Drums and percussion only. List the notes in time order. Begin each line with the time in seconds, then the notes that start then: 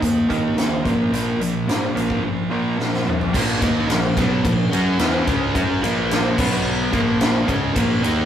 0.02 kick, closed hi-hat
0.30 kick, closed hi-hat
0.58 snare, closed hi-hat
0.85 kick, closed hi-hat
1.14 closed hi-hat
1.41 closed hi-hat
1.69 snare, closed hi-hat
1.97 closed hi-hat
2.10 kick
2.80 snare
2.94 snare
3.08 mid tom
3.21 floor tom
3.34 kick, crash
3.62 kick, ride
3.90 snare, ride
4.17 kick, ride
4.45 kick, ride
4.73 ride
4.99 snare, ride
5.27 kick, ride
5.55 kick, ride
5.84 ride
6.11 snare, ride
6.38 kick, crash
6.93 kick, ride
7.21 snare, ride
7.48 kick, ride
7.76 kick, ride
8.04 ride